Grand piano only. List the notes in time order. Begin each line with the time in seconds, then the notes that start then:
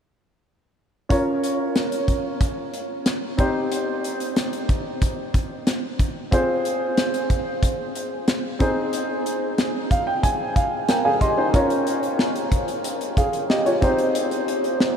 1.09 C#4 F4 A#4 C#5
3.37 C4 D#4 G4 C5
6.31 C4 F4 G#4 C5
8.59 C4 D#4 G#4 C5
9.91 F5
10.07 G5
10.23 G#5
10.56 F5
10.89 A#4 G5
11.05 G#4 F5 G#5
11.21 G4 D#5 C6
11.38 D#4 C5
11.53 C#4 F4 A#4 C#5
13.17 G#4 F5
13.50 G4 D#5
13.66 F4 C#5
13.81 C4 D#4 G4 C5